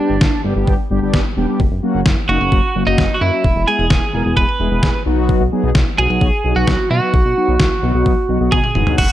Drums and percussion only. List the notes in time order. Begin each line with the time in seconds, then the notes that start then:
0.21 kick, snare
0.68 kick
1.14 kick, snare
1.60 kick
2.06 kick, snare
2.52 kick
2.98 kick, snare
3.44 kick
3.90 kick, snare
4.37 kick
4.83 kick, snare
5.29 kick
5.75 kick, snare
6.21 kick
6.67 kick, snare
7.14 kick
7.60 kick, snare
8.06 kick
8.52 kick, high tom
8.64 mid tom
8.75 mid tom
8.87 floor tom
8.98 kick, crash